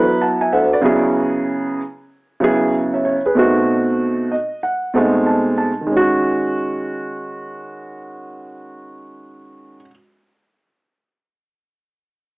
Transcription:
0.00 0.13 D2 medium
0.00 0.66 F#3 medium
0.00 0.63 B3 medium
0.00 0.64 E4 medium
0.00 0.22 B4 medium
0.21 0.41 F#5 soft
0.21 0.41 A5 medium
0.41 0.51 E5 medium
0.41 0.52 G#5 medium
0.52 0.80 D2 medium
0.52 0.72 C5 medium
0.52 0.72 E5 medium
0.52 0.82 F#5 medium
0.73 1.03 B4 medium
0.73 1.03 D5 medium
0.81 1.79 C#3 medium
0.81 1.80 F#3 medium
0.81 1.80 B3 medium
0.81 1.81 E4 medium
0.81 1.81 G#4 medium
2.40 3.16 C#3 medium
2.40 3.16 F#3 medium
2.40 3.17 B3 medium
2.40 3.17 E4 medium
2.40 2.74 G#4 medium
2.94 3.03 C#5 soft
2.94 3.04 E5 medium
3.05 3.24 C#5 medium
3.26 3.56 G#4 medium
3.26 3.56 B4 medium
3.35 4.32 B2 medium
3.35 4.33 A3 medium
3.35 4.33 C4 medium
3.35 4.34 D#4 medium
3.35 4.34 F#4 medium
4.31 4.61 D#5 medium
4.63 4.92 F#5 medium
4.94 5.69 B2 medium
4.94 5.71 G#3 medium
4.94 5.69 A3 medium
4.94 5.70 C4 medium
4.94 5.70 D#4 medium
4.94 5.24 F#5 medium
5.26 5.56 A5 medium
5.58 5.87 A5 medium
5.81 9.75 D#3 medium
5.87 9.80 G#3 medium
5.91 9.85 C#4 medium
5.97 9.90 F#4 medium

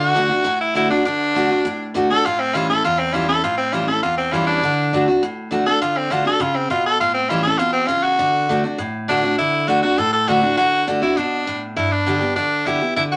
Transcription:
0.00 0.13 D3 loud
0.00 0.58 F#4 loud
0.15 0.29 D3 medium
0.15 0.30 A3 medium
0.15 0.30 D4 medium
0.15 0.28 F#4 loud
0.29 0.45 D4 medium
0.29 0.44 F#4 medium
0.44 1.01 A2 medium
0.60 0.75 E4 loud
0.75 0.89 D3 medium
0.75 0.89 A3 medium
0.75 0.90 D4 medium
0.75 0.90 E4 loud
0.75 0.89 F#4 medium
0.90 1.05 D4 medium
0.90 1.04 F#4 medium
1.05 1.34 D3 medium
1.05 1.92 D4 loud
1.35 1.49 D3 medium
1.35 1.50 A3 medium
1.35 1.50 D4 loud
1.35 1.49 F#4 loud
1.51 1.65 D4 medium
1.51 1.64 F#4 medium
1.65 2.21 A2 loud
1.94 2.08 D3 medium
1.94 2.09 A3 medium
1.94 2.09 D4 loud
1.94 2.09 F#4 medium
2.10 2.25 D4 medium
2.10 2.24 F#4 medium
2.10 2.27 A4 loud
2.25 2.81 A2 loud
2.25 2.41 F4 loud
2.39 2.56 C4 loud
2.54 2.68 E3 medium
2.54 2.68 G3 loud
2.54 2.69 C#4 loud
2.54 2.68 E4 medium
2.54 2.68 F4 medium
2.69 2.84 C#4 medium
2.69 2.83 E4 medium
2.69 2.83 A4 loud
2.84 3.40 E2 medium
2.84 3.00 F4 loud
2.99 3.15 C4 loud
3.13 3.28 E3 medium
3.13 3.28 G3 medium
3.13 3.28 C#4 medium
3.13 3.27 E4 medium
3.13 3.28 F4 medium
3.28 3.43 C#4 medium
3.28 3.42 E4 medium
3.28 3.43 A4 loud
3.44 4.00 A2 loud
3.44 3.57 F4 loud
3.57 3.74 C4 loud
3.72 3.87 E3 medium
3.72 3.87 G3 medium
3.72 3.87 C#4 medium
3.72 3.86 E4 loud
3.72 3.87 F4 medium
3.87 4.02 C#4 medium
3.87 4.02 E4 medium
3.87 4.02 A4 loud
4.03 4.59 E2 loud
4.03 4.17 F4 loud
4.18 4.34 C4 loud
4.32 4.61 E3 medium
4.32 4.61 G3 medium
4.32 4.61 C#4 medium
4.32 4.61 E4 medium
4.32 4.46 F4 medium
4.47 5.04 D4 loud
4.63 4.92 D3 medium
4.93 5.07 D3 medium
4.93 5.07 A3 medium
4.93 5.07 D4 medium
4.93 5.07 F#4 medium
5.08 5.22 D4 soft
5.08 5.21 F#4 medium
5.23 5.79 A2 medium
5.51 5.65 D3 medium
5.51 5.66 A3 medium
5.51 5.66 D4 medium
5.51 5.65 F#4 loud
5.66 5.81 D4 medium
5.66 5.80 F#4 medium
5.66 5.81 A4 loud
5.82 6.09 D3 medium
5.82 5.99 F4 loud
5.97 6.13 C4 loud
6.10 6.25 D3 medium
6.10 6.25 A3 medium
6.10 6.25 D4 medium
6.10 6.26 F4 medium
6.10 6.24 F#4 loud
6.25 6.40 D4 medium
6.25 6.40 F#4 medium
6.25 6.43 A4 loud
6.40 6.68 C#3 medium
6.40 6.57 F4 loud
6.56 6.70 C4 loud
6.70 6.98 B2 medium
6.70 6.85 F4 loud
6.86 7.00 A4 loud
7.00 7.57 A2 medium
7.00 7.13 F4 loud
7.14 7.31 C4 loud
7.29 7.44 E3 medium
7.29 7.44 G3 medium
7.29 7.44 C#4 loud
7.29 7.44 E4 loud
7.29 7.42 F4 medium
7.43 7.59 E4 medium
7.43 7.60 A4 loud
7.47 7.60 C#4 medium
7.58 7.88 B2 loud
7.58 7.72 F4 loud
7.73 7.89 C4 loud
7.87 8.17 C#3 medium
7.87 8.05 F4 loud
8.03 8.61 F#4 loud
8.19 8.48 D3 loud
8.49 8.63 D3 medium
8.49 8.63 A3 medium
8.49 8.64 D4 medium
8.49 8.63 F#4 loud
8.64 8.79 D4 medium
8.64 8.78 F#4 medium
8.78 9.35 A2 loud
9.08 9.22 D3 medium
9.08 9.23 A3 medium
9.08 9.36 D4 loud
9.08 9.23 D4 medium
9.08 9.22 F#4 loud
9.23 9.38 D4 medium
9.23 9.37 F#4 medium
9.38 9.67 D3 medium
9.38 9.70 E4 loud
9.68 9.82 D3 medium
9.68 9.82 A3 medium
9.68 9.82 D4 medium
9.68 9.82 F#4 medium
9.68 9.82 F#4 loud
9.83 9.98 D4 medium
9.83 10.00 F#4 loud
9.83 9.97 F#4 medium
9.98 10.54 A2 medium
9.98 10.12 A4 loud
10.13 10.29 A4 loud
10.28 10.42 D3 medium
10.28 10.42 A3 medium
10.28 10.42 D4 medium
10.28 10.57 F#4 loud
10.28 10.40 F#4 medium
10.41 10.57 D4 medium
10.41 10.56 F#4 medium
10.57 10.86 D3 loud
10.57 10.85 F#4 loud
10.87 11.01 D3 medium
10.87 11.02 A3 medium
10.87 11.02 D4 medium
10.87 11.00 F#4 loud
11.02 11.17 D4 soft
11.02 11.18 E4 medium
11.02 11.16 F#4 medium
11.16 11.45 B2 medium
11.16 11.61 D4 loud
11.47 11.75 A2 medium
11.76 12.33 G2 medium
11.76 11.93 E4 loud
11.92 12.35 D4 loud
12.06 12.21 D3 medium
12.06 12.21 G3 medium
12.06 12.21 B3 medium
12.06 12.19 G4 loud
12.21 12.36 B3 medium
12.21 12.35 G4 medium
12.36 12.65 D3 medium
12.36 12.67 D4 loud
12.66 12.80 D3 medium
12.66 12.80 G3 medium
12.66 12.81 B3 medium
12.66 12.95 E4 loud
12.66 12.80 G4 medium
12.81 12.96 B3 soft
12.81 12.95 G4 medium
12.96 13.16 D3 loud
12.96 13.03 E4 loud
13.12 13.16 F#4 loud

